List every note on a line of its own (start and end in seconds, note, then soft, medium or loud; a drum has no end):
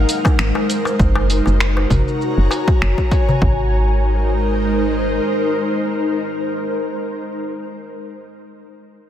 0.00 0.99 G#3 medium
0.00 1.97 D#4 medium
0.00 1.97 A#4 medium
0.00 0.99 C5 medium
0.09 open hi-hat medium
0.09 shaker medium
0.25 kick loud
0.25 darbuka ka medium
0.25 darbuka tek medium
0.25 shaker soft
0.39 0.52 G#1 medium
0.39 finger snap loud
0.39 shaker soft
0.55 darbuka tek medium
0.70 open hi-hat medium
0.70 shaker medium
0.85 darbuka ka soft
0.85 darbuka tek medium
0.85 shaker soft
0.99 1.41 F#1 medium
0.99 3.42 F#4 medium
0.99 kick loud
0.99 shaker soft
1.16 darbuka ka medium
1.16 darbuka tek medium
1.30 open hi-hat medium
1.30 shaker medium
1.46 1.86 F#1 medium
1.46 3.42 A#5 medium
1.46 darbuka ka medium
1.46 shaker soft
1.60 finger snap medium
1.60 shaker soft
1.77 3.42 C#5 medium
1.77 darbuka ka soft
1.77 darbuka tek medium
1.90 2.04 F#1 medium
1.90 kick medium
1.90 open hi-hat medium
1.90 darbuka dum medium
1.90 shaker medium
2.08 3.42 G#5 medium
2.08 shaker soft
2.22 shaker soft
2.38 2.48 F#1 medium
2.51 open hi-hat medium
2.51 darbuka tek medium
2.51 shaker medium
2.68 kick loud
2.68 shaker soft
2.82 2.95 F#1 medium
2.82 finger snap medium
2.82 shaker soft
2.98 kick medium
2.98 shaker soft
3.12 kick loud
3.12 open hi-hat medium
3.12 shaker medium
3.29 darbuka dum medium
3.29 shaker soft
3.41 5.20 G#1 medium
3.41 6.52 G#3 medium
3.41 kick medium
3.52 6.60 D#4 medium
3.61 6.60 A#4 medium
3.69 6.60 C5 medium